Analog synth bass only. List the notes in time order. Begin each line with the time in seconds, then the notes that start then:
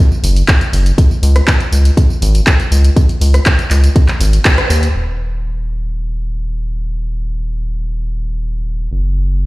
0.24 F#1
0.73 F#1
1.23 C#2
1.72 C#2
2.22 G#1
2.72 C#2
3.21 C#2
3.71 C#2
4.20 G#1
4.70 D#2
4.95 D#1
8.92 F#1